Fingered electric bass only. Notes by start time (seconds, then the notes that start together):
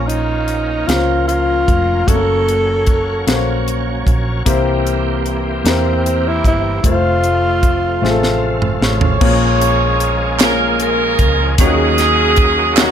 Already playing: A#1
0.88 C#2
1.68 F1
2.08 F#1
3.27 A#1
4.07 A#1
4.46 C2
5.64 E2
6.44 G1
6.84 F1
8.02 A1
8.81 A1
9.21 A#1
11.19 C#2
11.59 D#2